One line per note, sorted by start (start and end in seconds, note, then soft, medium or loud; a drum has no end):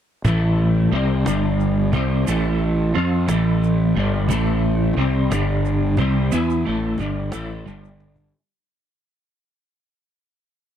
0.24 0.88 A1 medium
0.24 0.91 A2 medium
0.24 0.92 E3 loud
0.24 0.92 A3 loud
0.24 cajon bass loud
0.24 shaker medium
0.58 cajon slap soft
0.92 1.24 C2 medium
0.92 1.25 C3 medium
0.92 1.25 G3 medium
0.92 1.26 C4 loud
0.92 cajon slap soft
1.25 1.90 G1 medium
1.25 1.92 G2 medium
1.25 1.92 D3 medium
1.25 1.92 G3 medium
1.25 cajon slap loud
1.25 shaker medium
1.59 cajon slap soft
1.59 shaker soft
1.92 2.25 C2 loud
1.92 2.26 C3 medium
1.92 2.26 G3 loud
1.92 2.26 C4 loud
1.92 cajon bass medium
2.26 2.91 A1 medium
2.26 2.93 A2 medium
2.26 2.94 E3 medium
2.26 2.94 A3 loud
2.26 cajon slap medium
2.26 shaker loud
2.59 cajon slap soft
2.94 3.27 F2 medium
2.94 3.26 F3 medium
2.94 3.27 C4 loud
2.94 3.28 F4 loud
2.94 cajon slap soft
3.26 3.92 A1 medium
3.26 3.94 A2 medium
3.26 3.94 E3 medium
3.26 3.95 A3 medium
3.26 cajon slap loud
3.26 shaker medium
3.62 cajon slap soft
3.62 shaker soft
3.96 4.27 G1 medium
3.96 4.28 G2 medium
3.96 4.28 D3 medium
3.96 4.29 G3 loud
3.96 cajon slap soft
4.28 4.92 A1 medium
4.28 4.95 A2 loud
4.28 4.96 E3 loud
4.28 4.96 A3 loud
4.28 cajon bass loud
4.28 shaker medium
4.63 cajon slap soft
4.97 5.28 C2 loud
4.97 5.29 C3 medium
4.97 5.30 G3 loud
4.97 5.30 C4 loud
4.97 cajon slap soft
5.30 5.94 G1 medium
5.30 5.96 G2 medium
5.30 5.97 D3 loud
5.30 5.97 G3 loud
5.30 cajon slap loud
5.30 shaker medium
5.65 shaker soft
5.97 6.29 C2 medium
5.97 6.30 C3 medium
5.97 6.31 G3 medium
5.97 6.31 C4 loud
5.97 cajon bass medium
6.31 6.64 E2 medium
6.31 6.64 E3 loud
6.31 6.64 B3 loud
6.31 6.65 E4 loud
6.31 shaker medium
6.50 shaker soft
6.64 6.98 A1 medium
6.64 6.97 A2 medium
6.64 6.98 E3 medium
6.64 6.98 A3 loud
6.64 cajon slap soft
6.98 7.29 G1 medium
6.98 7.31 G2 medium
6.98 7.31 D3 medium
6.98 7.32 G3 loud
6.98 cajon bass medium
6.98 shaker soft
7.31 7.64 A1 medium
7.31 7.64 A2 medium
7.31 7.65 E3 medium
7.31 7.65 A3 loud
7.31 cajon slap loud
7.31 shaker medium
7.65 8.30 G1 loud
7.65 8.32 G2 medium
7.65 8.32 D3 medium
7.65 8.32 G3 loud
7.65 shaker soft
7.84 shaker soft
7.99 cajon slap soft
7.99 cajon slap medium
8.16 cajon bass medium